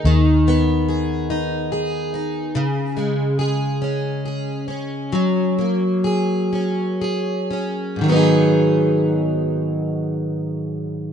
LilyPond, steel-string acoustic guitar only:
\new Staff \with { instrumentName = "Steel-string acoustic guitar" } { \time 6/8 \key gis \minor \tempo 4. = 45 dis8 b8 gis'8 dis'8 gis'8 dis'8 | cis8 gis8 gis'8 cis'8 gis'8 cis'8 | fis8 ais8 gis'8 cis'8 gis'8 cis'8 | <gis, dis fis b dis' gis'>2. | }